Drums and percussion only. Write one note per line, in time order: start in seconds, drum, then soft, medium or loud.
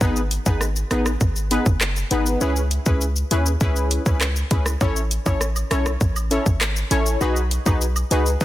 0.01 kick loud
0.01 shaker medium
0.16 shaker medium
0.31 closed hi-hat medium
0.31 shaker medium
0.46 kick medium
0.46 shaker medium
0.61 cross-stick medium
0.61 shaker medium
0.76 shaker soft
0.91 cross-stick loud
0.91 closed hi-hat medium
0.91 shaker medium
1.06 cross-stick loud
1.06 shaker medium
1.21 kick medium
1.21 shaker medium
1.36 shaker medium
1.51 closed hi-hat medium
1.51 shaker medium
1.66 kick loud
1.66 shaker medium
1.81 cross-stick medium
1.81 clap medium
1.81 shaker medium
1.96 shaker soft
2.11 closed hi-hat medium
2.11 shaker soft
2.26 shaker medium
2.41 shaker medium
2.56 shaker medium
2.71 closed hi-hat medium
2.71 shaker medium
2.86 kick medium
2.86 shaker medium
3.01 shaker medium
3.16 shaker soft
3.31 closed hi-hat medium
3.31 shaker medium
3.46 shaker medium
3.61 kick loud
3.61 shaker medium
3.76 shaker medium
3.91 closed hi-hat medium
3.91 shaker medium
4.06 kick loud
4.06 shaker medium
4.21 cross-stick medium
4.21 clap medium
4.21 shaker medium
4.36 shaker medium
4.51 kick loud
4.51 closed hi-hat medium
4.51 shaker soft
4.66 cross-stick medium
4.66 shaker medium
4.81 kick loud
4.81 high woodblock medium
4.81 shaker medium
4.96 shaker medium
5.11 closed hi-hat medium
5.11 cabasa medium
5.11 shaker medium
5.26 kick medium
5.26 high woodblock medium
5.26 shaker medium
5.41 cross-stick medium
5.41 shaker medium
5.56 high woodblock medium
5.56 shaker medium
5.71 cross-stick loud
5.71 closed hi-hat medium
5.71 cabasa medium
5.71 shaker medium
5.86 cross-stick loud
5.86 shaker medium
6.01 kick loud
6.01 shaker medium
6.16 high woodblock medium
6.16 shaker medium
6.31 closed hi-hat medium
6.31 cabasa medium
6.31 shaker medium
6.46 kick loud
6.46 shaker medium
6.60 cross-stick medium
6.60 clap medium
6.60 high woodblock medium
6.60 shaker medium
6.76 shaker medium
6.91 closed hi-hat medium
6.91 cabasa medium
6.91 shaker medium
7.06 shaker medium
7.21 high woodblock medium
7.21 shaker medium
7.36 shaker medium
7.51 closed hi-hat medium
7.51 cabasa medium
7.51 shaker medium
7.66 kick medium
7.66 high woodblock medium
7.66 shaker medium
7.81 shaker medium
7.96 high woodblock medium
7.96 shaker medium
8.11 closed hi-hat medium
8.11 cabasa medium
8.11 shaker medium
8.26 shaker medium
8.41 kick medium
8.41 shaker medium